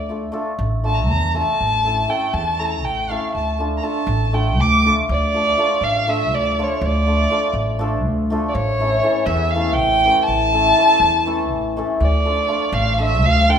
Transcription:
Already playing: upright bass D2
0.09 hammered dulcimer A3 D4 F4 A4
0.32 hammered dulcimer A3 D4 F4 A4
0.59 upright bass A1
0.84 hammered dulcimer A3 D4 F4 A4, violin A5
0.94 violin A5 A#5
1.08 upright bass E2, violin A#5
1.34 hammered dulcimer A3 D4 F4 A4, violin A5
1.61 upright bass A1
1.84 hammered dulcimer A3 C#4 E4 A4
2.08 hammered dulcimer A3 C#4 E4 A4, violin G5
2.33 upright bass E2, violin A5
2.59 hammered dulcimer A3 C#4 E4 A4, violin A#5
2.65 violin A5
2.70 violin A#5
2.84 upright bass A1, violin G5
3.09 hammered dulcimer A3 C#4 E4 A4, violin F5
3.35 upright bass D2, violin A5
3.58 hammered dulcimer A3 D4 F4 A4
3.77 violin A#5
3.82 hammered dulcimer A3 D4 F4 A4, violin A5
4.07 upright bass A1
4.33 hammered dulcimer A3 D4 F4 A4, violin G5
4.58 upright bass D2, violin D6
4.85 hammered dulcimer A3 D4 F4 A4
5.09 upright bass D2, violin D5
5.34 hammered dulcimer F3 A3 D4 F4 A4
5.58 hammered dulcimer F3 A3 D4 F4 A4
5.81 upright bass A1, violin F5
6.07 hammered dulcimer F3 A3 D4 F4 A4, violin E5
6.31 upright bass D2, violin D5
6.59 hammered dulcimer F3 A3 D4 F4 A4
6.63 violin C#5
6.81 upright bass D2, violin D5
7.07 hammered dulcimer F3 A3 D4 F4 A4
7.30 hammered dulcimer F3 A3 D4 F4 A4
7.53 upright bass A1
7.79 hammered dulcimer F3 A3 D4 F4 A4
8.05 upright bass D2
8.30 hammered dulcimer F3 A3 D4 F4 A4
8.49 violin D5
8.54 upright bass A1, violin C#5
8.80 hammered dulcimer E3 A3 C#4 E4 A4
9.03 hammered dulcimer E3 A3 C#4 E4 A4
9.26 upright bass E2, violin E5
9.50 violin F5
9.55 hammered dulcimer E3 A3 C#4 E4 A4
9.74 upright bass A1, violin G5
10.05 hammered dulcimer E3 A3 C#4 E4 A4
10.23 violin A5
10.28 upright bass A1
10.53 hammered dulcimer E3 A3 C#4 E4 A4
10.77 hammered dulcimer E3 A3 C#4 E4 A4
11.00 upright bass E2
11.26 hammered dulcimer E3 A3 C#4 E4 A4
11.51 upright bass A1
11.77 hammered dulcimer E3 A3 C#4 E4 A4
12.00 upright bass D2, violin D5
12.25 hammered dulcimer F3 A3 D4 F4 A4
12.48 hammered dulcimer F3 A3 D4 F4 A4
12.72 upright bass A1, violin F5
12.98 hammered dulcimer F3 A3 D4 F4 A4, violin E5
13.22 upright bass D2, violin F5
13.48 hammered dulcimer F3 A3 D4 F4 A4, violin G5

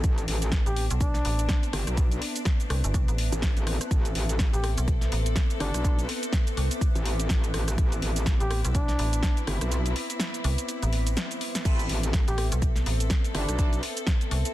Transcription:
Already playing: string section B3 C4, ambient pad B4 E5 A5
0.04 wobble bass A1, string section D4, kick, closed hi-hat, cabasa
0.18 closed hi-hat, cabasa
0.28 wobble bass A1, open hi-hat
0.42 closed hi-hat, cabasa
0.52 kick, snare, closed hi-hat, cabasa
0.66 fm bass A1, muted trumpet G4, closed hi-hat, cabasa
0.76 open hi-hat
0.91 fm bass B1, closed hi-hat, cabasa
1.01 muted trumpet D4, kick, closed hi-hat, cabasa
1.14 snare, closed hi-hat, cabasa
1.25 fm bass A1, open hi-hat
1.39 closed hi-hat, cabasa
1.49 kick, snare, closed hi-hat, cabasa
1.63 closed hi-hat, cabasa
1.73 wobble bass G1, cross-stick, open hi-hat
1.87 wobble bass B1, cross-stick, closed hi-hat, cabasa
1.97 kick, closed hi-hat, cabasa
2.11 closed hi-hat, cabasa
2.22 open hi-hat
2.36 closed hi-hat, cabasa
2.45 kick, snare, closed hi-hat, cabasa
2.60 closed hi-hat, cabasa
2.70 fm bass C2, cross-stick, open hi-hat
2.84 fm bass G1, closed hi-hat, cabasa
2.94 fm bass C2, kick, closed hi-hat, cabasa
3.08 fm bass A1, closed hi-hat, cabasa
3.18 open hi-hat
3.32 wobble bass A1, closed hi-hat, cabasa
3.42 kick, snare, closed hi-hat, cabasa
3.57 wobble bass A1, closed hi-hat, cabasa
3.67 cross-stick, open hi-hat
3.81 cross-stick, closed hi-hat, cabasa
3.91 wobble bass A1, string section A4, kick, closed hi-hat, cabasa
4.05 closed hi-hat, cabasa
4.12 wobble bass A1, ambient pad D6, open hi-hat
4.29 closed hi-hat, cabasa
4.39 kick, snare, closed hi-hat, cabasa
4.53 fm bass A1, muted trumpet G4, closed hi-hat, cabasa
4.64 cross-stick, open hi-hat
4.78 fm bass B1, closed hi-hat, cabasa
4.88 kick, closed hi-hat, cabasa
5.01 snare, closed hi-hat, cabasa
5.12 fm bass A1, open hi-hat
5.26 closed hi-hat, cabasa
5.36 kick, snare, closed hi-hat, cabasa
5.50 closed hi-hat, cabasa
5.60 wobble bass G1, muted trumpet D4, cross-stick, open hi-hat
5.74 wobble bass B1, cross-stick, closed hi-hat, cabasa
5.84 kick, closed hi-hat, cabasa
5.99 closed hi-hat, cabasa
6.09 open hi-hat
6.23 closed hi-hat, cabasa
6.33 kick, snare, closed hi-hat, cabasa
6.47 closed hi-hat, cabasa
6.57 fm bass C2, open hi-hat
6.71 closed hi-hat, cabasa
6.81 kick, closed hi-hat, cabasa
6.95 wobble bass A1, closed hi-hat, cabasa
7.06 open hi-hat
7.20 closed hi-hat, cabasa
7.29 wobble bass A1, kick, snare, closed hi-hat, cabasa
7.44 closed hi-hat, cabasa
7.54 wobble bass A1, cross-stick, open hi-hat
7.68 cross-stick, closed hi-hat, cabasa
7.78 wobble bass A1, string section E4, kick, closed hi-hat, cabasa
7.92 closed hi-hat, cabasa
8.02 wobble bass A1, open hi-hat
8.16 closed hi-hat, cabasa
8.26 kick, snare, closed hi-hat, cabasa
8.40 fm bass A1, muted trumpet G4, closed hi-hat, cabasa
8.51 cross-stick, open hi-hat
8.65 fm bass B1, closed hi-hat, cabasa
8.75 muted trumpet D4, kick, closed hi-hat, cabasa
8.88 snare, closed hi-hat, cabasa
8.99 fm bass A1, open hi-hat
9.13 closed hi-hat, cabasa
9.23 kick, snare, closed hi-hat, cabasa
9.37 closed hi-hat, cabasa
9.47 wobble bass G1, cross-stick, open hi-hat
9.61 wobble bass B1, cross-stick, closed hi-hat, cabasa
9.72 closed hi-hat, cabasa
9.86 closed hi-hat, cabasa
9.96 open hi-hat
10.10 closed hi-hat, cabasa
10.20 snare, closed hi-hat, cabasa
10.34 closed hi-hat, cabasa
10.44 fm bass C2, open hi-hat
10.58 closed hi-hat, cabasa
10.69 closed hi-hat, cabasa
10.83 fm bass A1, closed hi-hat, cabasa
10.93 open hi-hat
11.07 closed hi-hat, cabasa
11.17 snare, closed hi-hat, cabasa
11.31 closed hi-hat, cabasa
11.41 open hi-hat
11.55 snare, closed hi-hat, cabasa
11.65 wobble bass A1, synth stab C4 E4 A4 B4, string section A4, kick, closed hi-hat, crash, cabasa
11.79 closed hi-hat, cabasa
11.86 wobble bass A1, ambient pad A5, open hi-hat
12.03 closed hi-hat, cabasa
12.13 kick, snare, closed hi-hat, cabasa
12.28 fm bass A1, muted trumpet G4, closed hi-hat, cabasa
12.38 cross-stick, open hi-hat
12.52 fm bass B1, closed hi-hat, cabasa
12.62 kick, closed hi-hat, cabasa
12.76 snare, closed hi-hat, cabasa
12.86 fm bass A1, open hi-hat
13.00 closed hi-hat, cabasa
13.10 kick, snare, closed hi-hat, cabasa
13.24 closed hi-hat, cabasa
13.35 wobble bass G1, synth stab C4 E4 A4 B4, muted trumpet D4, cross-stick, open hi-hat
13.49 wobble bass B1, cross-stick, closed hi-hat, cabasa
13.59 synth stab C4 E4 A4 B4, kick, closed hi-hat, cabasa
13.73 closed hi-hat, cabasa
13.83 open hi-hat
13.97 closed hi-hat, cabasa
14.07 kick, snare, closed hi-hat, cabasa
14.21 closed hi-hat, cabasa
14.31 fm bass C2, open hi-hat
14.45 closed hi-hat, cabasa

